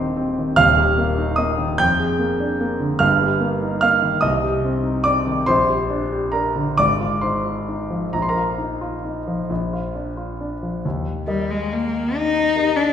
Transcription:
0.00 0.52 D#1 medium
0.00 0.53 D#2 medium
0.00 0.39 D#3 medium
0.00 0.17 C4 medium
0.00 0.60 D#4 medium
0.00 0.60 G4 medium
0.00 0.60 C5 medium
0.00 0.60 D5 medium
0.00 0.60 D#5 medium
0.00 0.60 C6 loud
0.00 0.60 D6 loud
0.00 0.60 D#6 loud
0.17 0.49 C4 medium
0.39 0.58 D#3 medium
0.56 1.77 D#1 medium
0.56 1.78 D#2 medium
0.56 1.36 F5 loud
0.56 1.40 F6 loud
0.78 1.11 G4 medium
0.98 1.31 A#3 medium
1.18 1.52 D#4 medium
1.36 1.72 A#3 medium
1.36 1.77 D#5 medium
1.36 1.79 D#6 medium
1.58 1.80 D#3 medium
1.78 2.98 F2 medium
1.78 2.98 G5 loud
1.78 3.01 G6 loud
1.99 2.32 G#4 medium
2.19 2.53 A#3 medium
2.40 2.73 D4 medium
2.60 2.93 A#3 medium
2.80 3.01 D3 medium
2.99 4.20 G1 medium
2.99 4.20 G2 medium
2.99 3.79 F5 medium
2.99 3.79 F6 loud
3.21 3.55 G4 medium
3.40 3.74 A#3 medium
3.62 3.96 D#4 medium
3.81 4.16 A#3 medium
3.81 4.21 F5 medium
3.81 4.23 F6 loud
4.02 4.23 D#3 medium
4.21 5.44 C2 medium
4.21 5.02 D#5 medium
4.21 5.05 D#6 loud
4.44 4.77 G4 medium
4.65 4.98 C4 medium
4.83 5.18 D#4 medium
5.04 5.40 C4 medium
5.04 5.45 D5 medium
5.04 5.47 D6 loud
5.27 5.48 D#3 medium
5.46 6.73 A#1 medium
5.46 6.29 C5 medium
5.46 6.33 C6 loud
5.70 6.04 G4 medium
5.90 6.25 D4 medium
6.12 6.47 G4 medium
6.32 6.68 D4 medium
6.32 6.74 A#4 medium
6.32 6.76 A#5 medium
6.56 6.77 D3 medium
6.77 8.10 G#1 medium
6.77 7.19 D5 medium
6.77 7.21 D6 loud
7.01 7.35 F4 medium
7.21 7.58 D#4 soft
7.21 8.09 C5 medium
7.21 8.13 C6 medium
7.45 7.81 F4 soft
7.69 8.04 D#4 medium
7.91 8.13 F3 medium
8.13 9.46 A#1 medium
8.13 8.21 A#5 medium
8.22 8.30 C6 medium
8.29 9.46 A#4 medium
8.29 9.49 A#5 medium
8.36 8.73 F4 soft
8.58 8.95 D#4 soft
8.81 9.18 F4 medium
9.04 9.40 D#4 soft
9.27 9.50 F3 medium
9.50 10.81 A#1 medium
9.73 10.09 F4 medium
9.95 10.31 D4 soft
10.17 10.54 F4 soft
10.41 10.76 D4 medium
10.63 10.84 F3 soft
10.85 11.26 D#2 medium
11.27 11.52 G3 medium
11.27 12.51 G4 soft
11.27 12.51 A#4 soft
11.27 12.51 D#5 soft
11.51 11.75 G#3 medium
11.73 12.18 A#3 medium
12.17 12.78 D#4 medium
12.56 12.93 G4 soft
12.56 12.93 A#4 soft
12.56 12.93 D#5 soft
12.76 12.93 D4 medium

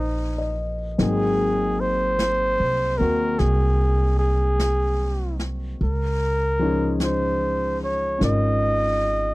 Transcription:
0.00 0.95 A#1 medium
0.00 0.97 F3 soft
0.00 0.97 A#3 soft
0.00 0.97 C4 soft
0.00 0.62 D#4 medium
0.00 0.98 D#4 soft
0.00 0.99 G4 soft
0.00 1.01 A#4 soft
0.00 0.75 C5 soft
0.38 1.25 D#5 soft
0.98 2.55 G#1 medium
0.98 5.80 F#3 soft
0.98 2.97 A#3 soft
0.98 2.98 C4 soft
0.98 5.80 D#4 soft
0.98 5.80 G#4 soft
0.98 1.82 G#4 medium
0.98 brush sweep soft
0.98 snare soft
1.80 2.99 C5 medium
2.19 brush sweep soft
2.19 snare soft
2.19 hi-hat pedal soft
2.60 2.97 C2 soft
2.98 3.37 D#2 medium
2.98 5.80 A#3 soft
2.98 5.80 C4 soft
2.98 5.81 F#4 soft
2.98 3.41 A#4 medium
3.39 5.76 C2 medium
3.39 4.18 G#4 medium
3.39 brush sweep soft
3.39 snare soft
4.19 5.36 G#4 medium
4.59 brush sweep soft
4.59 snare soft
4.59 hi-hat pedal soft
5.39 snare soft
5.79 8.17 C#2 medium
5.79 brush sweep soft
5.83 6.98 A#4 medium
6.59 9.34 F3 soft
6.59 9.34 G#3 soft
6.59 8.17 C#4 soft
6.59 8.18 D#4 soft
6.63 9.34 G#4 soft
7.00 7.79 C5 medium
7.00 brush sweep soft
7.00 snare soft
7.00 hi-hat pedal soft
7.84 8.20 C#5 medium
8.18 9.34 G#1 medium
8.18 9.34 C#4 soft
8.18 9.34 D#4 soft
8.18 9.34 F4 soft
8.18 9.34 A#4 soft
8.18 brush sweep soft
8.18 snare soft
8.25 9.34 D#5 medium

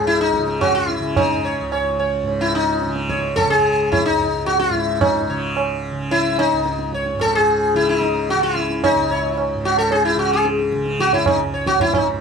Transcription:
0.00 1.61 C#2 medium
0.00 2.23 G#2 medium
0.00 0.38 C#3 soft
0.06 0.20 E4 medium
0.06 tabla te medium
0.20 0.61 D#4 medium
0.20 tabla te medium
0.34 tabla ke medium
0.38 1.00 C#3 medium
0.48 tabla te medium
0.61 0.74 F#4 medium
0.61 tabla na medium
0.61 tabla ge medium
0.75 1.16 E4 medium
0.89 tabla te medium
1.00 2.85 C#3 medium
1.16 1.95 D#4 medium
1.16 tabla na medium
1.16 tabla ge medium
1.45 1.70 C#5 soft
1.61 4.08 C#2 medium
1.72 1.98 C#5 soft
1.72 tabla na medium
1.99 2.25 C#5 soft
1.99 tabla na medium
2.23 4.69 G#2 medium
2.28 tabla tin medium
2.41 2.55 E4 medium
2.55 3.20 D#4 medium
2.82 3.47 C#3 medium
2.82 tabla te medium
2.96 tabla te medium
3.09 3.35 C#5 soft
3.09 tabla ke medium
3.23 tabla te medium
3.36 3.50 A4 medium
3.36 tabla na medium
3.36 tabla ge medium
3.47 5.30 C#3 medium
3.47 3.91 G#4 medium
3.92 4.05 E4 medium
3.92 tabla na medium
3.92 tabla ge medium
4.06 6.52 C#2 medium
4.06 4.46 D#4 medium
4.20 tabla ge medium
4.46 4.59 F#4 medium
4.46 tabla te medium
4.59 5.01 E4 medium
4.59 tabla te medium
4.69 7.14 G#2 medium
4.75 tabla ke medium
4.88 tabla te medium
5.01 5.80 D#4 medium
5.01 tabla na medium
5.01 tabla ge medium
5.30 5.92 C#3 medium
5.30 5.55 C#5 soft
5.57 tabla na medium
5.92 7.75 C#3 medium
6.11 6.37 E4 medium
6.11 tabla tin medium
6.38 6.89 D#4 medium
6.38 tabla na medium
6.53 8.94 C#2 medium
6.66 tabla te medium
6.79 tabla te medium
6.93 7.19 C#5 soft
6.93 tabla ke medium
7.06 tabla te medium
7.14 9.54 G#2 medium
7.20 7.35 A4 medium
7.20 tabla na medium
7.20 tabla ge medium
7.35 7.75 G#4 medium
7.74 8.34 C#3 medium
7.74 7.88 E4 medium
7.74 tabla te medium
7.89 8.30 D#4 medium
7.89 tabla te medium
8.02 tabla ke medium
8.15 tabla te medium
8.29 8.42 F#4 medium
8.29 tabla te medium
8.34 10.15 C#3 medium
8.43 8.83 E4 medium
8.43 tabla te medium
8.56 tabla ke medium
8.70 tabla te medium
8.84 9.65 D#4 medium
8.84 tabla na medium
8.84 tabla ge medium
8.95 11.35 C#2 medium
9.11 9.36 C#5 soft
9.38 tabla na medium
9.55 11.94 G#2 medium
9.65 9.78 F#4 medium
9.78 9.91 A4 medium
9.91 10.05 G#4 medium
9.91 tabla tin medium
10.05 10.19 E4 medium
10.15 10.75 C#3 medium
10.19 10.33 F#4 medium
10.33 10.45 G#4 medium
10.45 tabla te medium
10.59 tabla te medium
10.72 12.21 C#3 medium
10.72 tabla ke medium
10.86 tabla te medium
11.00 11.13 F#4 medium
11.00 tabla ke medium
11.13 11.26 E4 medium
11.13 tabla tin medium
11.13 tabla ge medium
11.26 11.39 D#4 medium
11.26 tabla na medium
11.26 tabla ge medium
11.35 12.21 C#2 medium
11.54 11.78 C#5 soft
11.67 11.81 F#4 medium
11.67 tabla ke medium
11.80 11.94 E4 medium
11.80 tabla tin medium
11.80 tabla ge medium
11.93 12.21 G#2 medium
11.93 12.06 D#4 medium
11.93 tabla na medium
11.93 tabla ge medium

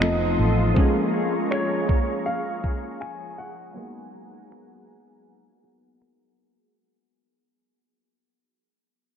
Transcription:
0.00 0.35 F1 medium
0.00 0.73 F3 medium
0.00 3.51 F3 medium
0.00 0.76 A3 medium
0.00 0.76 C4 medium
0.00 0.77 D#4 medium
0.00 3.73 F4 medium
0.00 0.76 A4 medium
0.00 0.77 A4 medium
0.00 0.34 D#5 medium
0.00 0.76 C6 medium
0.00 0.73 D#6 medium
0.00 finger snap loud
0.39 0.72 A1 medium
0.74 3.71 F3 medium
0.74 3.72 G#3 medium
0.74 3.79 A#3 medium
0.74 3.72 A#3 medium
0.74 3.73 C#4 medium
0.74 6.73 G#4 medium
0.74 3.74 A#5 medium
0.74 3.74 C#6 medium
0.74 kick loud
0.79 3.74 G#4 medium
1.14 1.51 G#4 medium
1.51 2.63 G#4 medium
1.51 2.28 C#5 medium
1.51 1.88 C#5 medium
1.51 finger snap loud
1.89 3.00 C#5 medium
1.89 kick medium
2.26 3.03 F5 medium
2.64 4.17 G#4 medium
2.64 kick medium
3.01 3.84 C#5 medium
3.01 3.36 G#5 loud
3.01 finger snap loud
3.38 6.34 F#5 loud
3.74 6.71 F#3 medium
3.74 7.26 G#3 medium
3.74 6.72 A#3 medium
3.74 6.72 B3 medium
3.74 6.73 D#4 medium
3.74 6.73 F#5 medium
3.74 6.73 G#5 medium
3.74 6.73 A#5 medium
3.79 6.74 G#4 medium
4.14 4.51 F#4 medium
4.51 7.34 B3 medium
4.51 5.63 F#4 medium
4.51 4.88 A#4 medium
4.51 finger snap medium
4.88 5.07 G#4 medium
5.07 6.00 A#4 medium
5.63 7.34 F#4 medium
6.01 7.34 A#4 medium
6.01 finger snap loud

